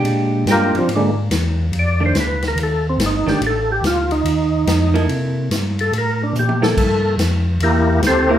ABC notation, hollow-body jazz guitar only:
X:1
M:4/4
L:1/8
Q:"Swing" 1/4=143
K:F
V:1 name="Hollow-body jazz guitar"
[_A,DG]2 [A,DG] z4 z | z [_E,A,D] z4 z [E,A,D] | z6 z [B,EA]- | [B,EA]2 z4 z [B,EA]- |
[B,EA]2 z4 z [B,E] |]